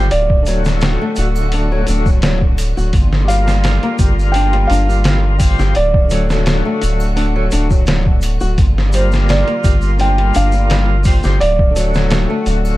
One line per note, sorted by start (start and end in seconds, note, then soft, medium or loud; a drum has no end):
0.00 12.77 D3 medium
0.00 0.11 G4 loud
0.00 0.10 C5 loud
0.11 0.97 D1 loud
0.11 2.91 F#3 medium
0.11 2.91 A3 medium
0.11 2.91 F#4 medium
0.11 0.78 D5 loud
0.11 open hi-hat medium
0.11 shaker soft
0.30 kick medium
0.43 1.82 D3 medium
0.43 open hi-hat medium
0.43 shaker loud
0.48 0.64 F#3 loud
0.48 1.84 A3 medium
0.48 1.86 F#4 medium
0.65 0.99 F#3 medium
0.65 snare soft
0.65 shaker medium
0.81 snare loud
0.81 open hi-hat medium
0.81 shaker soft
1.02 1.17 A3 loud
1.16 1.85 D1 medium
1.16 1.29 F#4 medium
1.16 open hi-hat medium
1.16 shaker medium
1.35 triangle medium
1.35 shaker medium
1.52 1.71 D4 medium
1.52 open hi-hat medium
1.52 shaker soft
1.72 1.86 F#3 loud
1.86 2.74 D1 loud
1.86 2.08 D3 medium
1.86 2.09 A3 medium
1.86 2.05 D4 loud
1.86 open hi-hat medium
1.86 shaker loud
1.90 2.11 F#4 loud
2.06 2.22 F#3 medium
2.06 kick medium
2.06 shaker soft
2.22 2.41 F#3 loud
2.22 snare loud
2.22 open hi-hat medium
2.22 shaker soft
2.41 kick medium
2.58 open hi-hat medium
2.58 triangle medium
2.58 shaker medium
2.77 2.92 D1 medium
2.77 2.93 F#4 loud
2.77 shaker medium
2.93 3.79 G1 loud
2.93 5.74 G3 medium
2.93 5.74 A#3 medium
2.93 5.74 F4 medium
2.93 kick loud
2.93 open hi-hat medium
2.93 shaker soft
3.13 snare soft
3.25 5.35 G3 medium
3.25 4.30 F5 loud
3.25 open hi-hat medium
3.29 3.46 G3 loud
3.29 5.37 F4 medium
3.29 shaker medium
3.34 5.39 A#4 loud
3.48 3.81 G3 medium
3.48 snare soft
3.48 shaker medium
3.64 snare loud
3.64 open hi-hat medium
3.64 shaker soft
3.83 3.99 A#3 loud
3.83 closed hi-hat soft
3.99 4.67 G1 medium
3.99 4.10 G4 medium
3.99 kick loud
3.99 open hi-hat medium
3.99 shaker loud
4.19 shaker medium
4.32 4.53 D4 loud
4.32 4.70 G5 loud
4.32 open hi-hat medium
4.32 shaker soft
4.53 4.69 G3 loud
4.53 closed hi-hat soft
4.67 5.56 G1 loud
4.67 4.87 D4 loud
4.67 5.35 F5 medium
4.67 open hi-hat medium
4.72 shaker loud
4.89 5.04 G3 medium
4.89 shaker medium
5.04 5.23 G3 loud
5.04 snare loud
5.04 open hi-hat medium
5.04 shaker soft
5.38 5.73 G3 medium
5.38 5.74 F4 medium
5.38 kick medium
5.38 open hi-hat medium
5.38 shaker loud
5.43 5.75 C5 loud
5.59 5.74 G1 medium
5.59 5.75 G4 loud
5.59 snare soft
5.59 shaker medium
5.75 6.62 D1 loud
5.75 8.56 F#3 medium
5.75 8.56 A3 medium
5.75 8.56 F#4 medium
5.75 6.78 D5 loud
5.75 open hi-hat medium
5.75 shaker soft
5.94 kick loud
6.07 7.46 D3 medium
6.07 shaker medium
6.11 6.28 F#3 medium
6.11 7.48 A3 medium
6.11 open hi-hat medium
6.15 7.50 F#4 medium
6.30 6.63 F#3 medium
6.30 snare soft
6.30 shaker medium
6.46 snare loud
6.46 open hi-hat medium
6.46 shaker soft
6.65 6.81 A3 loud
6.81 7.50 D1 medium
6.81 6.92 F#4 medium
6.81 open hi-hat medium
6.81 shaker loud
7.00 triangle medium
7.00 shaker medium
7.16 7.34 D4 loud
7.16 open hi-hat medium
7.16 shaker soft
7.36 7.51 F#3 loud
7.50 8.38 D1 loud
7.50 7.73 D3 medium
7.50 7.74 A3 medium
7.50 7.69 D4 medium
7.50 open hi-hat medium
7.50 shaker loud
7.55 7.75 F#4 medium
7.71 7.86 F#3 medium
7.71 kick medium
7.71 shaker medium
7.86 8.06 F#3 medium
7.86 snare loud
7.86 open hi-hat medium
7.86 shaker soft
8.06 kick medium
8.22 open hi-hat medium
8.22 triangle medium
8.22 shaker medium
8.40 8.57 D1 medium
8.40 8.57 F#4 loud
8.40 shaker medium
8.58 9.44 G1 loud
8.58 11.38 G3 medium
8.58 11.38 A#3 medium
8.58 11.38 F4 medium
8.58 kick loud
8.58 open hi-hat medium
8.58 shaker soft
8.78 snare soft
8.89 10.99 G3 medium
8.89 shaker medium
8.93 9.10 G3 loud
8.93 11.01 F4 medium
8.93 9.02 C5 medium
8.93 open hi-hat medium
8.98 11.03 A#4 medium
9.12 9.46 G3 medium
9.12 snare soft
9.12 shaker medium
9.29 9.96 D5 medium
9.29 snare loud
9.29 open hi-hat medium
9.29 shaker soft
9.47 9.63 A#3 medium
9.47 closed hi-hat soft
9.64 10.32 G1 medium
9.64 9.75 G4 medium
9.64 kick loud
9.64 open hi-hat medium
9.64 shaker medium
9.82 shaker medium
9.99 10.17 D4 loud
9.99 10.36 G5 loud
9.99 open hi-hat medium
9.99 shaker soft
10.18 10.33 G3 medium
10.18 closed hi-hat soft
10.34 11.21 G1 loud
10.34 10.52 D4 loud
10.34 11.02 F5 loud
10.34 open hi-hat medium
10.34 shaker medium
10.52 10.69 G3 medium
10.52 shaker medium
10.70 10.88 G3 loud
10.70 snare loud
10.70 open hi-hat medium
10.70 shaker soft
11.03 11.37 G3 loud
11.03 11.38 F4 medium
11.03 kick loud
11.03 open hi-hat medium
11.03 shaker medium
11.07 11.39 C5 loud
11.23 11.39 G1 medium
11.23 11.40 G4 loud
11.23 snare soft
11.23 shaker medium
11.40 12.27 D1 loud
11.40 12.77 F#3 medium
11.40 12.77 A3 medium
11.40 12.77 F#4 medium
11.40 12.07 D5 loud
11.40 open hi-hat medium
11.40 shaker soft
11.59 kick medium
11.71 12.77 D3 medium
11.76 11.93 F#3 loud
11.76 12.77 A3 medium
11.76 open hi-hat medium
11.76 shaker medium
11.80 12.77 F#4 medium
11.94 12.28 F#3 medium
11.94 snare medium
11.94 shaker medium
12.10 snare loud
12.10 open hi-hat medium
12.10 shaker soft
12.30 12.46 A3 loud
12.46 12.77 D1 medium
12.46 12.57 F#4 medium
12.46 open hi-hat medium
12.46 shaker medium
12.65 triangle medium
12.65 shaker soft